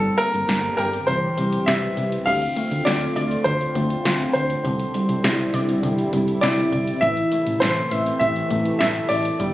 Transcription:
Already playing: fm bass G1, analog synth pad D3 A#3 C4 G4, synth pluck G3, grand piano A4
0.18 synth pluck A#3, grand piano A#4, closed hi-hat
0.34 fm bass G1, closed hi-hat
0.49 fm bass G1, synth pluck A4, kick, snare, closed hi-hat
0.77 fm bass G1, grand piano A#4, synth pluck G5, closed hi-hat
0.93 closed hi-hat
1.07 fm bass C2, synth pluck E3, analog synth pad E3 G3 C4, grand piano C5, kick, closed hi-hat
1.38 fm bass C2, synth pluck G3, closed hi-hat
1.53 closed hi-hat
1.66 fm bass C2, synth pluck G4, grand piano E5, kick, snare, closed hi-hat
1.97 fm bass C2, closed hi-hat
2.12 closed hi-hat
2.26 fm bass D2, analog synth pad D3 A3 C4 F4, synth pluck D3, grand piano F5, kick, closed hi-hat, crash
2.42 closed hi-hat
2.57 synth pluck A3, closed hi-hat
2.71 fm bass D2, closed hi-hat
2.85 fm bass D2, synth pluck F4, grand piano D5, snare, closed hi-hat
3.01 closed hi-hat
3.16 fm bass D2, synth pluck D5, closed hi-hat
3.31 closed hi-hat
3.44 fm bass D2, synth pluck D3, grand piano C5, kick, closed hi-hat
3.61 closed hi-hat
3.75 fm bass D2, synth pluck A3, kick, closed hi-hat
3.90 closed hi-hat
4.05 fm bass D2, synth pluck F4, snare, closed hi-hat
4.20 closed hi-hat
4.33 fm bass D2, grand piano C5, closed hi-hat
4.50 closed hi-hat
4.65 fm bass C2, synth pluck D3, analog synth pad G3 E4, kick, closed hi-hat
4.79 closed hi-hat
4.94 synth pluck G3, closed hi-hat
5.09 fm bass C2, closed hi-hat
5.24 fm bass C2, synth pluck E4, snare, closed hi-hat
5.39 closed hi-hat
5.54 fm bass C2, synth pluck D5, closed hi-hat
5.69 closed hi-hat
5.83 fm bass C2, synth pluck D3, kick, closed hi-hat
5.98 closed hi-hat
6.13 fm bass C2, synth pluck G3, kick, closed hi-hat
6.28 closed hi-hat
6.41 fm bass C2, synth pluck E4, grand piano D5, snare, closed hi-hat
6.58 closed hi-hat
6.72 fm bass C2, kick, closed hi-hat
6.88 closed hi-hat
7.01 fm bass A1, analog synth pad C3 E3 A3, synth pluck E3, grand piano E5, kick, closed hi-hat
7.17 closed hi-hat
7.32 synth pluck A3, closed hi-hat
7.47 fm bass A1, closed hi-hat
7.60 fm bass A1, synth pluck A4, grand piano C5, snare, closed hi-hat
7.76 closed hi-hat
7.91 fm bass A1, synth pluck E5, closed hi-hat
8.06 closed hi-hat
8.19 fm bass A1, synth pluck E3, grand piano E5, kick, closed hi-hat
8.36 closed hi-hat
8.51 fm bass A1, synth pluck A3, kick, closed hi-hat
8.65 closed hi-hat
8.79 fm bass A1, synth pluck A4, grand piano E5, snare, closed hi-hat
8.95 closed hi-hat
9.09 fm bass A1, grand piano D5, open hi-hat
9.25 closed hi-hat
9.40 fm bass G1, analog synth pad D3 A#3 G4, synth pluck G3, kick, closed hi-hat

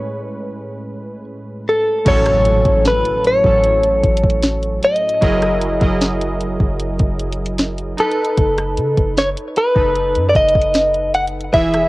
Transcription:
Already playing: synth keys A2 G#3 C#4 B4, clean electric guitar C#5
1.69 clean electric guitar A4
2.05 808-style bass A1, synth keys A2 F#3 C#4 A4, clean electric guitar C#5, kick, closed hi-hat, crash, impact
2.26 cross-stick, closed hi-hat
2.45 closed hi-hat
2.65 808-style bass A1, kick, closed hi-hat
2.85 clean electric guitar B4, snare, closed hi-hat
3.05 closed hi-hat
3.24 clean electric guitar C#5, closed hi-hat
3.44 808-style bass A1, synth keys A2 F#3 C#4 A4, kick
3.64 closed hi-hat
3.83 closed hi-hat
4.03 808-style bass A1, kick, closed hi-hat
4.17 closed hi-hat
4.23 kick
4.30 closed hi-hat
4.42 snare, closed hi-hat
4.63 closed hi-hat
4.83 clean electric guitar D#5, closed hi-hat
4.96 closed hi-hat
5.09 closed hi-hat
5.21 808-style bass F#1, synth keys F#3 E4 G#4 A#4 D#5, kick, closed hi-hat
5.42 cross-stick, closed hi-hat
5.61 closed hi-hat
5.80 808-style bass F#1, synth keys F#3 E4 G#4 A#4 D#5, kick, closed hi-hat
6.01 snare, closed hi-hat
6.21 closed hi-hat
6.41 closed hi-hat
6.60 808-style bass F#1, kick
6.80 closed hi-hat
6.99 808-style bass F#1, kick, closed hi-hat
7.19 closed hi-hat
7.33 closed hi-hat
7.46 closed hi-hat
7.58 snare, closed hi-hat
7.78 closed hi-hat
7.97 synth keys D#4 A4 B4, clean electric guitar A4, closed hi-hat
8.12 closed hi-hat
8.25 closed hi-hat
8.37 808-style bass F#1, kick, closed hi-hat
8.58 cross-stick, closed hi-hat
8.77 808-style bass C#3, closed hi-hat
8.97 808-style bass F#1, kick, closed hi-hat
9.17 clean electric guitar C#5, snare, closed hi-hat
9.37 closed hi-hat
9.56 clean electric guitar B4, closed hi-hat
9.75 808-style bass F#1, synth keys D#4 A4 B4, kick
9.96 closed hi-hat
10.15 808-style bass F#2, closed hi-hat
10.29 clean electric guitar D5
10.35 808-style bass F#1, clean electric guitar D#5, kick, closed hi-hat
10.49 closed hi-hat
10.55 kick
10.62 closed hi-hat
10.74 snare, closed hi-hat
10.94 closed hi-hat
11.14 clean electric guitar F#5, closed hi-hat
11.27 closed hi-hat
11.41 closed hi-hat
11.52 808-style bass E1, synth keys E3 E4 G#4 E5, clean electric guitar E5, kick, closed hi-hat
11.74 cross-stick, closed hi-hat

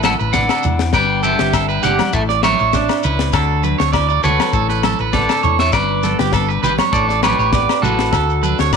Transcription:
Already playing: fingered electric bass A1, clean electric guitar A2 D3 D4
0.03 clean electric guitar A3 A4 F#5 A5, snare, high conga, low agogo, shekere
0.19 fingered electric bass A1, clean electric guitar B4, shekere
0.33 clean electric guitar D4 D5 F#5, kick, snare, low conga, shekere
0.49 clean electric guitar A4, snare, low agogo, shekere
0.63 fingered electric bass E2, clean electric guitar E4, low conga, shekere
0.79 snare
0.93 fingered electric bass G1, clean electric guitar G2 B3 D4 B4 D5 G5, kick, snare, low agogo, shekere
0.97 clean electric guitar G4
1.23 clean electric guitar B3 A4 E5 G5, high conga, shekere
1.39 fingered electric bass G1, clean electric guitar G4, snare, shekere
1.53 clean electric guitar D4 A4, kick, snare, low agogo, shekere
1.69 clean electric guitar B4, shekere
1.83 fingered electric bass G1, clean electric guitar G4 D5 F#5, snare, low conga, shekere
1.99 snare, high conga, low agogo, shekere
2.13 fingered electric bass A1, clean electric guitar A2 A4 E5, kick, shekere
2.29 clean electric guitar D5, snare
2.43 clean electric guitar A3 C#5 E5, snare, high conga, low agogo, shekere
2.59 fingered electric bass A1, clean electric guitar C#5, shekere
2.73 clean electric guitar D4, kick, snare, low conga, shekere
2.88 snare, low agogo, shekere
3.03 fingered electric bass C#2, clean electric guitar E4 B4, low conga, shekere
3.19 snare
3.33 fingered electric bass D2, clean electric guitar D3 A3 D4 F#4 A4, kick, snare, low agogo, shekere
3.63 clean electric guitar D4 B4, high conga, shekere
3.78 fingered electric bass D2, clean electric guitar C#5, snare, shekere
3.93 clean electric guitar E4 D5, kick, snare, low agogo, shekere
4.09 clean electric guitar F#4 D5, shekere
4.23 fingered electric bass D2, clean electric guitar F#4 A4 B4 C#5, low conga, shekere
4.40 snare, high conga, low agogo
4.53 fingered electric bass A1, clean electric guitar A2 A4, kick, shekere
4.69 clean electric guitar B4, snare
4.83 clean electric guitar A3 A4, snare, high conga, low agogo, shekere
4.99 fingered electric bass A1, clean electric guitar B4, shekere
5.13 clean electric guitar B3 A4 D5, kick, snare, low conga, shekere
5.29 clean electric guitar D4 A4, snare, low agogo, shekere
5.43 fingered electric bass E2, clean electric guitar E4 C#5, low conga, shekere
5.59 clean electric guitar C#5 E5, snare
5.72 fingered electric bass G1, clean electric guitar G2 B4 D5, kick, snare, low agogo, shekere
6.03 clean electric guitar B3 A4, snare, high conga, shekere
6.19 fingered electric bass G1, clean electric guitar G4, snare, shekere
6.33 clean electric guitar D4 A4, kick, snare, low agogo, shekere
6.49 clean electric guitar B4, shekere
6.63 fingered electric bass G#1, clean electric guitar G4 B4, low conga, shekere
6.78 clean electric guitar C#5, snare, high conga, low agogo, shekere
6.92 fingered electric bass A1, clean electric guitar A2 A4 D5, kick, shekere
7.09 clean electric guitar D5, snare, shekere
7.23 clean electric guitar A3 G4 B4 C#5, snare, high conga, low agogo, shekere
7.39 fingered electric bass A1, clean electric guitar C#5, shekere
7.53 clean electric guitar B3 D5, kick, snare, low conga, shekere
7.69 clean electric guitar D4, snare, low agogo, shekere
7.82 fingered electric bass A1, clean electric guitar E4 F#4 A4 B4, high conga, low conga, shekere
7.99 snare, shekere
8.13 fingered electric bass D2, clean electric guitar A4, muted clean electric guitar stroke, kick, snare, low agogo, shekere
8.30 shekere
8.43 clean electric guitar D4 B4, high conga, shekere
8.59 fingered electric bass D2, clean electric guitar C#5, snare, shekere
8.73 fingered electric bass D1, kick, snare, low agogo, shekere

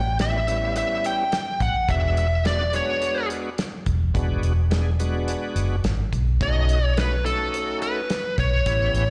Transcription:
Already playing: fingered electric bass A1, lead electric guitar G5
0.19 tonewheel organ G3 B3 C#4 E4, lead electric guitar E5, snare, closed hi-hat
0.47 tonewheel organ G3 B3 C#4 E4, closed hi-hat
0.76 lead electric guitar E5, closed hi-hat
1.04 lead electric guitar G5, closed hi-hat
1.32 snare, closed hi-hat
1.60 fingered electric bass A1, lead electric guitar F#5, kick, closed hi-hat
1.88 fingered electric bass E1, tonewheel organ G#3 B3 D4 F#4, lead electric guitar E5, kick, closed hi-hat
2.17 closed hi-hat
2.44 tonewheel organ G#3 B3 D4 F#4, lead electric guitar D5, snare, closed hi-hat
2.73 tonewheel organ G#3 B3 D4 F#4, lead electric guitar C#5, closed hi-hat
3.02 closed hi-hat
3.30 closed hi-hat
3.58 snare, closed hi-hat
3.86 fingered electric bass E1, kick, closed hi-hat
4.14 fingered electric bass E1, tonewheel organ G#3 B3 D4 F#4, kick, closed hi-hat
4.43 fingered electric bass E1, closed hi-hat
4.70 tonewheel organ G#3 B3 D4 G#4, snare, closed hi-hat
4.99 tonewheel organ G#3 B3 D4 F#4, closed hi-hat
5.28 closed hi-hat
5.55 fingered electric bass F#1, closed hi-hat
5.84 fingered electric bass G#1, snare, closed hi-hat
6.12 fingered electric bass B1, kick, closed hi-hat
6.41 fingered electric bass B1, tonewheel organ A3 C#4 D#4 F#4, lead electric guitar D#5, kick, closed hi-hat
6.69 closed hi-hat
6.88 lead electric guitar C#5
6.97 tonewheel organ A3 C#4 D#4 F#4, lead electric guitar B4, snare, closed hi-hat
7.25 tonewheel organ A3 C#4 D#4 F#4, lead electric guitar A4, closed hi-hat
7.54 closed hi-hat
7.82 lead electric guitar B4, closed hi-hat
8.10 snare, closed hi-hat
8.38 fingered electric bass B1, lead electric guitar C#5, kick, closed hi-hat
8.66 fingered electric bass A1, tonewheel organ B3 C#4 E4 G4, kick, closed hi-hat
8.94 fingered electric bass A1, closed hi-hat

